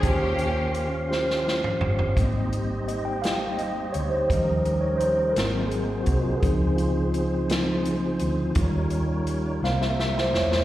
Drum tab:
HH |x-x-x-------|x-x-x-x-x-x-|x-x-x-x-x-x-|x-x-x-x-x-x-|
SD |------ooo---|------o-----|------o-----|------o-----|
T2 |---------o--|------------|------------|------------|
FT |----------oo|------------|------------|------------|
BD |o-----------|o-----------|o---------o-|o-----------|

HH |x-x-x-------|
SD |------oooooo|
T2 |------------|
FT |------------|
BD |o-----------|